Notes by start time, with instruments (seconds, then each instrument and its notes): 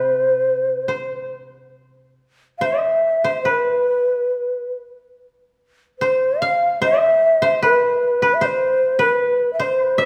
Already playing: koto C3 E3 A3 F4 B4 C5, shakuhachi C5
0.88 koto C5
2.58 koto E5, shakuhachi F5
2.65 shakuhachi E5
3.24 koto C5
3.42 koto B4, shakuhachi C5
3.50 shakuhachi B4
4.09 koto A#4
4.25 koto A4
5.99 shakuhachi C5, koto C5
6.40 shakuhachi F5, koto F5
6.82 koto E5, shakuhachi E5
7.42 koto C5
7.62 koto B4, shakuhachi B4
8.22 koto B4
8.34 shakuhachi E5
8.41 koto C5
8.47 shakuhachi C5
8.99 koto B4, shakuhachi B4
9.53 shakuhachi E5
9.60 koto C5, shakuhachi C5
9.82 koto B4
9.98 koto E5, shakuhachi E5